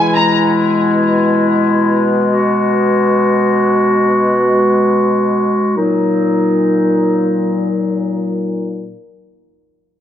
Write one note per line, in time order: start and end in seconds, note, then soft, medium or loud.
0.00 5.73 B2 medium
0.00 2.75 E3 medium
0.00 5.73 G#3 medium
0.00 2.15 E4 medium
0.00 2.27 E4 medium
0.00 2.28 G#4 medium
0.00 2.28 B4 medium
0.00 0.13 G#5 loud
0.16 0.34 A#5 medium
2.32 5.73 F#4 medium
5.77 8.93 A#2 medium
5.77 8.93 F#3 medium
5.77 8.93 D#4 medium